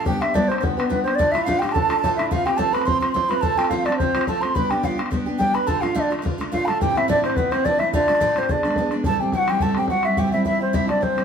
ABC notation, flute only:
X:1
M:4/4
L:1/16
Q:"Swing" 1/4=214
K:Ddor
V:1 name="Flute"
g2 e2 d2 c3/2 c/2 z2 B2 B2 c2 | d2 e2 f2 g2 a4 a2 e2 | f2 g2 a2 b2 c'2 c'2 c'2 b2 | a2 g2 f2 d2 c4 a2 c'2 |
b2 g2 f2 z6 g2 b2 | a2 f2 d2 z6 f3/2 b/2 a2 | g2 e2 d2 c2 B2 c2 d2 e2 | d6 c2 d6 z2 |
[K:Ador] a3/2 a/2 g2 f2 g2 a2 g2 f2 e2 | g2 e2 e2 c2 e2 d2 c4 |]